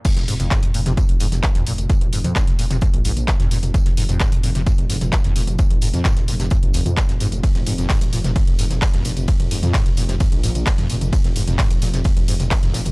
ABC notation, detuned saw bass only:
X:1
M:4/4
L:1/16
Q:1/4=130
K:Fm
V:1 name="Detuned saw bass" clef=bass
z F,,, F,,, F,,, z F,,, F,,, F,,, z F,,, F,,, F,,, z E,,, F,,, F,,, | z F,,, F,,, F,, z F,,, F,,, F,,, z B,,, B,,, B,,, z F,,, F,,, F,,, | z F,,, F,,, F,,, z F,,, F,,, F,,, z F,,, F,,, F,,, z E,,, F,,, F,,, | z F,,, F,,, F,, z F,,, F,,, F,,, z G,,, F,,, F,, z F,,, F,,, F,,, |
z F,,, F,,, F,,, z F,,, F,,, F,,, z F,,, F,,, F,,, z E,,, F,,, F,,, | z F,,, F,,, F,, z F,,, F,,, F,,, z B,,, B,,, B,,, z F,,, F,,, F,,, | z F,,, F,,, F,,, z F,,, F,,, F,,, z F,,, F,,, F,,, z E,,, F,,, F,,, |]